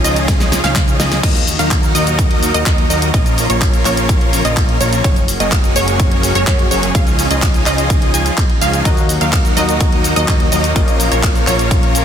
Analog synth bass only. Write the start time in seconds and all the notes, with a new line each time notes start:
0.04 C#2
0.64 C#2
1.00 C#2
1.23 D#2
1.59 D#2
1.95 D#2
2.54 D#2
2.66 D#2
2.90 D#2
3.14 A#1
3.50 A#1
3.85 A#1
4.45 A#1
4.81 A#1
5.40 F#1
5.76 F#1
6.35 F#1
6.47 F#2
6.71 F#1
6.95 C#2
7.30 C#2
7.66 C#2
8.14 C#2
8.61 C#2
8.85 D#2
9.21 D#2
9.57 D#2
10.16 D#2
10.52 D#2
10.76 A#1
11.12 A#1
11.47 A#1